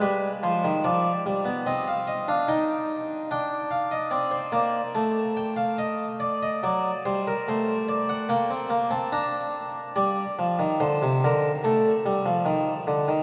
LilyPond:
<<
  \new Staff \with { instrumentName = "Harpsichord" } { \time 4/4 \key g \phrygian \tempo 4 = 72 b'8 c''8 d''4 ees''16 f''16 ees''16 f''16 g''4 | g''8 f''16 ees''16 d''16 c''16 d''8 a''8 g''16 f''16 ees''8 d''16 ees''16 | d''8 c''16 bes'16 c''8 d''16 fis''16 g''8. a''16 bes''4 | \key g \minor d''4 c''8 bes'8 a'2 | }
  \new Staff \with { instrumentName = "Harpsichord" } { \clef bass \time 4/4 \key g \phrygian g8 f16 ees16 f8 g16 b16 c'8. d'16 ees'4 | d'4 c'8 bes8 a2 | fis8 g8 a4 bes16 c'16 bes16 c'16 d'4 | \key g \minor g8 f16 ees16 d16 c16 d8 a8 g16 f16 ees8 d16 ees16 | }
>>